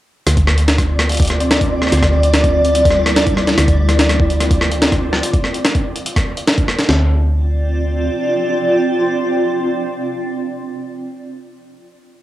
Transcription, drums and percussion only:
0.27 cross-stick, closed hi-hat
0.37 kick, closed hi-hat
0.47 cross-stick
0.58 closed hi-hat
0.68 snare, closed hi-hat
0.78 kick, cross-stick, closed hi-hat
0.99 cross-stick, closed hi-hat
1.09 closed hi-hat
1.12 closed hi-hat
1.14 closed hi-hat
1.17 closed hi-hat
1.20 kick, closed hi-hat
1.22 closed hi-hat
1.25 closed hi-hat
1.27 cross-stick, closed hi-hat
1.40 closed hi-hat
1.51 cross-stick, snare, closed hi-hat
1.61 kick, closed hi-hat
1.82 cross-stick
1.87 cross-stick
1.92 cross-stick, closed hi-hat
1.97 cross-stick
2.03 kick, cross-stick, closed hi-hat
2.23 closed hi-hat
2.34 cross-stick, snare, closed hi-hat
2.44 kick, closed hi-hat
2.65 closed hi-hat
2.75 closed hi-hat
2.85 kick, closed hi-hat
2.91 cross-stick
3.06 cross-stick, closed hi-hat
3.16 snare, closed hi-hat
3.27 kick, closed hi-hat
3.37 cross-stick
3.47 snare, closed hi-hat
3.58 cross-stick, closed hi-hat
3.68 kick, closed hi-hat
3.89 cross-stick, closed hi-hat
3.99 snare, closed hi-hat
4.09 cross-stick, closed hi-hat
4.20 kick
4.30 closed hi-hat
4.41 cross-stick, closed hi-hat
4.51 kick, closed hi-hat
4.61 cross-stick
4.72 closed hi-hat
4.82 snare, closed hi-hat
4.92 kick, cross-stick, closed hi-hat
5.13 cross-stick
5.23 closed hi-hat
5.34 kick, closed hi-hat
5.44 cross-stick
5.54 closed hi-hat
5.65 cross-stick, snare, closed hi-hat
5.75 kick, closed hi-hat
5.96 closed hi-hat
6.06 closed hi-hat
6.16 kick, cross-stick, closed hi-hat
6.37 closed hi-hat
6.47 cross-stick, snare, closed hi-hat
6.58 kick, closed hi-hat
6.68 cross-stick
6.79 snare, closed hi-hat
6.89 snare

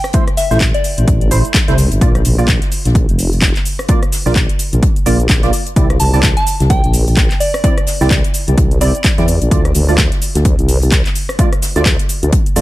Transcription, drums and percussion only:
0.04 cross-stick, shaker
0.13 kick, closed hi-hat, shaker
0.28 cross-stick, closed hi-hat, shaker
0.37 snare, closed hi-hat, open hi-hat, shaker
0.51 snare, shaker
0.60 kick, snare, clap, closed hi-hat, shaker
0.74 closed hi-hat, shaker
0.84 closed hi-hat, open hi-hat, shaker
0.98 closed hi-hat, shaker
1.08 kick, closed hi-hat, shaker
1.21 closed hi-hat, shaker
1.31 closed hi-hat, open hi-hat, shaker
1.45 closed hi-hat, shaker
1.54 kick, snare, clap, closed hi-hat, shaker
1.68 snare, closed hi-hat, shaker
1.78 closed hi-hat, open hi-hat, shaker
1.91 closed hi-hat, shaker
2.01 kick, closed hi-hat, shaker
2.15 cross-stick, closed hi-hat, shaker
2.25 closed hi-hat, open hi-hat, shaker
2.39 shaker
2.48 kick, snare, clap, closed hi-hat, shaker
2.62 snare, closed hi-hat, shaker
2.72 closed hi-hat, open hi-hat, shaker
2.85 snare, closed hi-hat, shaker
2.95 kick, closed hi-hat, shaker
3.09 closed hi-hat, shaker
3.19 closed hi-hat, open hi-hat, shaker
3.32 closed hi-hat, shaker
3.42 kick, snare, clap, closed hi-hat, shaker
3.55 snare, clap, closed hi-hat, shaker
3.65 closed hi-hat, open hi-hat, shaker
3.79 cross-stick, shaker
3.88 kick, closed hi-hat, shaker
4.03 cross-stick, closed hi-hat, shaker
4.12 snare, closed hi-hat, open hi-hat, shaker
4.26 snare, shaker
4.35 kick, snare, clap, closed hi-hat, shaker
4.49 closed hi-hat, shaker
4.59 closed hi-hat, open hi-hat, shaker
4.73 closed hi-hat, shaker
4.83 kick, closed hi-hat, shaker
4.96 closed hi-hat, shaker
5.06 closed hi-hat, open hi-hat, shaker
5.20 closed hi-hat, shaker
5.29 kick, snare, clap, closed hi-hat, shaker
5.43 snare, closed hi-hat, shaker
5.53 closed hi-hat, open hi-hat, shaker
5.66 closed hi-hat, shaker
5.76 kick, closed hi-hat, shaker
5.90 cross-stick, closed hi-hat, shaker
5.99 closed hi-hat, open hi-hat, shaker
6.14 shaker
6.23 kick, snare, clap, closed hi-hat, shaker
6.37 snare, closed hi-hat, shaker
6.47 closed hi-hat, open hi-hat, shaker
6.60 snare, closed hi-hat, shaker
6.70 kick, closed hi-hat, shaker
6.84 closed hi-hat, shaker
6.94 closed hi-hat, open hi-hat, shaker
7.07 closed hi-hat, shaker
7.17 kick, snare, clap, closed hi-hat, shaker
7.31 snare, clap, closed hi-hat, shaker
7.40 closed hi-hat, open hi-hat, shaker
7.54 cross-stick, shaker
7.64 kick, closed hi-hat, shaker
7.78 cross-stick, closed hi-hat, shaker
7.87 snare, closed hi-hat, open hi-hat, shaker
8.01 snare, shaker
8.11 kick, snare, clap, closed hi-hat, shaker
8.24 closed hi-hat, shaker
8.34 closed hi-hat, open hi-hat, shaker
8.48 closed hi-hat, shaker
8.58 kick, closed hi-hat, shaker
8.71 closed hi-hat, shaker
8.81 closed hi-hat, open hi-hat, shaker
8.95 closed hi-hat, shaker
9.04 kick, snare, clap, closed hi-hat, shaker
9.18 snare, closed hi-hat, shaker
9.28 closed hi-hat, open hi-hat, shaker
9.41 closed hi-hat, shaker
9.51 kick, closed hi-hat, shaker
9.65 cross-stick, closed hi-hat, shaker
9.74 closed hi-hat, open hi-hat, shaker
9.89 shaker
9.98 kick, snare, clap, closed hi-hat, shaker
10.12 snare, closed hi-hat, shaker
10.22 closed hi-hat, open hi-hat, shaker
10.35 snare, closed hi-hat, shaker
10.45 kick, closed hi-hat, shaker
10.59 closed hi-hat, shaker
10.68 closed hi-hat, open hi-hat, shaker
10.82 closed hi-hat, shaker
10.92 kick, snare, clap, closed hi-hat, shaker
11.06 snare, clap, closed hi-hat, shaker
11.15 closed hi-hat, open hi-hat, shaker
11.29 cross-stick, shaker
11.39 kick, closed hi-hat, shaker
11.53 cross-stick, closed hi-hat, shaker
11.62 snare, closed hi-hat, open hi-hat, shaker
11.75 snare, closed hi-hat, shaker
11.86 kick, snare, clap, closed hi-hat, shaker
11.99 closed hi-hat, shaker
12.09 closed hi-hat, open hi-hat, shaker
12.23 closed hi-hat, shaker
12.32 kick, closed hi-hat, shaker
12.46 closed hi-hat, shaker
12.56 closed hi-hat, open hi-hat, shaker

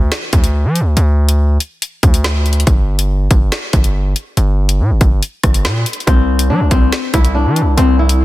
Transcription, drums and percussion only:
0.12 snare, closed hi-hat
0.33 kick, closed hi-hat
0.44 closed hi-hat
0.76 closed hi-hat
0.97 closed hi-hat
1.29 closed hi-hat
1.60 closed hi-hat
1.82 closed hi-hat
2.03 kick, closed hi-hat
2.14 closed hi-hat
2.24 snare
2.46 closed hi-hat
2.53 closed hi-hat
2.60 closed hi-hat
2.67 kick, closed hi-hat
2.99 closed hi-hat
3.31 kick, closed hi-hat
3.52 snare, closed hi-hat
3.73 kick, closed hi-hat
3.84 closed hi-hat
4.16 closed hi-hat
4.37 closed hi-hat
4.69 closed hi-hat
5.01 kick, closed hi-hat
5.23 closed hi-hat
5.43 kick, cross-stick, closed hi-hat
5.54 closed hi-hat
5.65 snare
5.86 closed hi-hat
5.93 closed hi-hat
6.00 closed hi-hat
6.07 kick, closed hi-hat
6.39 closed hi-hat
6.71 kick, closed hi-hat
6.92 snare, closed hi-hat
7.14 kick, closed hi-hat
7.25 closed hi-hat
7.56 closed hi-hat
7.78 closed hi-hat
8.09 closed hi-hat

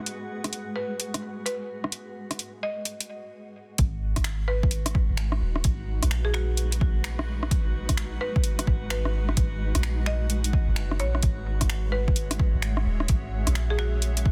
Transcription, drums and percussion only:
0.06 closed hi-hat
0.44 cross-stick, closed hi-hat
0.53 closed hi-hat
1.00 closed hi-hat
1.14 cross-stick, closed hi-hat
1.46 closed hi-hat
1.84 cross-stick
1.92 closed hi-hat
2.31 cross-stick, closed hi-hat
2.39 closed hi-hat
2.85 closed hi-hat
3.00 closed hi-hat
3.78 kick, closed hi-hat
4.16 kick, cross-stick, closed hi-hat
4.24 finger snap, closed hi-hat
4.63 kick
4.71 closed hi-hat
4.86 cross-stick, closed hi-hat
4.95 kick
5.17 finger snap, closed hi-hat
5.32 cross-stick
5.56 cross-stick
5.64 kick, closed hi-hat
6.03 cross-stick, closed hi-hat
6.11 finger snap, closed hi-hat
6.34 finger snap
6.57 closed hi-hat
6.72 closed hi-hat
6.81 kick
7.04 finger snap, closed hi-hat
7.19 cross-stick
7.43 cross-stick
7.51 kick, closed hi-hat
7.89 kick, cross-stick, closed hi-hat
7.97 finger snap, closed hi-hat
8.36 kick
8.44 closed hi-hat
8.59 cross-stick, closed hi-hat
8.67 kick
8.90 finger snap, closed hi-hat
9.05 cross-stick
9.29 cross-stick
9.37 kick, closed hi-hat
9.75 cross-stick, closed hi-hat
9.83 finger snap, closed hi-hat
10.06 finger snap
10.30 closed hi-hat
10.44 closed hi-hat
10.53 kick
10.76 finger snap, closed hi-hat
10.91 cross-stick
11.00 closed hi-hat
11.15 cross-stick
11.23 kick, closed hi-hat
11.61 kick, cross-stick, closed hi-hat
11.70 finger snap, closed hi-hat
12.08 kick
12.16 closed hi-hat
12.31 cross-stick, closed hi-hat
12.40 kick
12.62 finger snap, closed hi-hat
12.77 cross-stick
13.00 cross-stick
13.08 kick, closed hi-hat
13.47 cross-stick, closed hi-hat
13.55 finger snap, closed hi-hat
13.79 finger snap
14.02 closed hi-hat
14.17 closed hi-hat
14.26 kick

